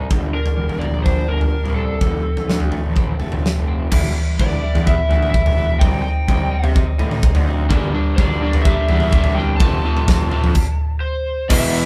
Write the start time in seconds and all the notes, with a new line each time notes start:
Already playing: C4
0.10 G1 G2, kick, floor tom
0.33 D3 A#4
0.46 floor tom
0.56 E1 G3
0.69 floor tom
0.79 A#3 D5, floor tom
0.92 A#1
1.03 D4 C5, kick, floor tom
1.28 G1 A#3 A#4
1.41 floor tom
1.53 G3
1.64 C2, mid tom
1.75 D4 A4
2.00 F1 F2, kick, floor tom
2.24 C3
2.37 floor tom
2.47 D2 F3, snare
2.60 floor tom
2.71 A3, floor tom
2.85 A1
2.96 C4, kick, floor tom
3.19 F1 A3, floor tom
3.32 floor tom
3.43 F3, snare
3.56 F1
3.68 C4
3.91 E1 E3 G3 B3 E4, kick, floor tom, crash
4.14 G3 B3 E4
4.38 E1 E3 G3 B3 E4 D5, kick, floor tom
4.62 E3 G3 B3 E4
4.75 E2, floor tom
4.86 E3 G3 B3 E4 E5, kick
5.09 D2 E3 G3 B3 E4, floor tom
5.22 mid tom
5.30 E3 G3 E5, kick
5.35 B3 E4
5.46 E1, floor tom
5.56 G3 B3 E4
5.79 C2 C3 G3 C4 D#4 G5, kick, floor tom
6.02 G3 C4 D#4 G5
6.27 C2 C3 G3 C4 D#4, kick, floor tom
6.50 C3 G3 C4 D#4
6.63 C3, floor tom
6.74 C3 G3 C4 D#4, kick
6.98 A2 C3 G3 C4 D#4, floor tom
7.11 mid tom
7.22 C3 G3 C4 D#4, kick
7.35 D2, floor tom
7.46 G3 C4 D#4
7.69 G1 G2 D3 G3 A#3 D4, kick, floor tom
7.93 G2 D3 G3 A#3 D4
8.16 G1 G2 D3 G3 A#3 D4 D5, kick, floor tom
8.40 G2 D3 G3 A#3 D4
8.53 G2, floor tom
8.62 G2 D3 G3 E5, kick
8.66 A#3 D4
8.88 E2 G2 D3 G3 A#3 D4, floor tom
9.00 mid tom
9.10 G2 D3 G3 A#3 E5, kick
9.15 D4
9.24 C2, floor tom
9.35 G2 D3 A#3 D4 G5
9.39 G3
9.57 F1 F2 C3 F3 A5, kick, floor tom
9.61 A3 C4
9.83 F2 C3 F3 A3 C4
9.97 mid tom
10.07 F1 F2 C3 F3 A3 C4, kick, snare, floor tom
10.30 F2 C3 F3 A3 C4, mid tom
10.44 F2, floor tom
10.55 kick, crash
11.00 C5
11.49 E1 E2 B2 E3 E5, kick, crash
11.75 open hi-hat